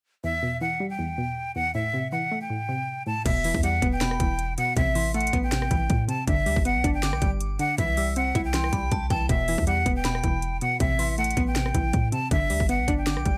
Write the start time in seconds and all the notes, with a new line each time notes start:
0.24 E2 E5
0.43 B2
0.61 E3 F#5
0.80 G3
0.90 G5
0.99 E2
1.18 B2
1.55 E2 F#5
1.75 A2 E5
1.94 C3
2.12 E3 F#5
2.32 A3
2.41 G5
2.50 A2
2.69 C3
3.07 A2 A5
3.26 E1 B2 E5, kick, closed hi-hat, crash
3.44 E3, open hi-hat
3.54 E2, kick
3.63 G3 F#5, closed hi-hat
3.82 E1 B3, kick, closed hi-hat
3.92 G5
4.01 B2 B5, snare, closed hi-hat
4.11 cross-stick
4.20 E1 E3, kick, closed hi-hat
4.39 closed hi-hat
4.58 B2 F#5, closed hi-hat
4.76 A1 C3 E5, kick, closed hi-hat
4.95 E3 C6, open hi-hat
5.14 A3 F#5, closed hi-hat
5.21 closed hi-hat
5.27 closed hi-hat
5.33 A1 B3, kick, closed hi-hat
5.43 G5
5.52 C3, snare, closed hi-hat
5.62 cross-stick
5.71 A1 E3, kick, closed hi-hat
5.90 A2, kick, closed hi-hat
6.08 C3 A5, closed hi-hat
6.27 G1 D3 E5, kick, closed hi-hat
6.46 D2 G3, open hi-hat
6.56 G1, kick
6.65 B3 F#5, closed hi-hat
6.75 B1
6.84 G1 D4, kick, closed hi-hat
6.94 G5
7.03 D3 D6, snare, closed hi-hat
7.13 B1, cross-stick
7.22 G1 G3, kick, closed hi-hat
7.41 closed hi-hat
7.59 D3 F#5, closed hi-hat
7.78 C2 E3 E5, kick, closed hi-hat
7.97 G3 E6, open hi-hat
8.16 C4 F#5, closed hi-hat
8.35 C2 E4, kick, closed hi-hat
8.45 G5
8.54 E3 C6, snare, closed hi-hat
8.64 cross-stick
8.73 C2 G3 B5, kick, closed hi-hat
8.91 C2 A5, kick, closed hi-hat
9.10 C2 E3 G5 A5, kick, closed hi-hat
9.29 E1 B2 E5, kick, closed hi-hat
9.48 E3, open hi-hat
9.58 E2, kick
9.67 G3 F#5, closed hi-hat
9.86 E1 B3, kick, closed hi-hat
9.96 G5
10.05 B2 B5, snare, closed hi-hat
10.15 cross-stick
10.24 E1 E3, kick, closed hi-hat
10.42 closed hi-hat
10.61 B2 F#5, closed hi-hat
10.80 A1 C3 E5, kick, closed hi-hat
10.99 E3 C6, open hi-hat
11.18 A3 F#5, closed hi-hat
11.24 closed hi-hat
11.31 closed hi-hat
11.37 A1 B3, kick, closed hi-hat
11.47 G5
11.56 C3, snare, closed hi-hat
11.66 cross-stick
11.74 A1 E3, kick, closed hi-hat
11.93 A2, kick, closed hi-hat
12.12 C3 A5, closed hi-hat
12.31 G1 D3 E5, kick, closed hi-hat
12.50 D2 G3, open hi-hat
12.60 G1, kick
12.69 B3 F#5, closed hi-hat
12.79 B1
12.88 G1 D4, kick, closed hi-hat
12.98 G5
13.07 D3 D6, snare, closed hi-hat
13.17 B1, cross-stick
13.26 G1 G3, kick, closed hi-hat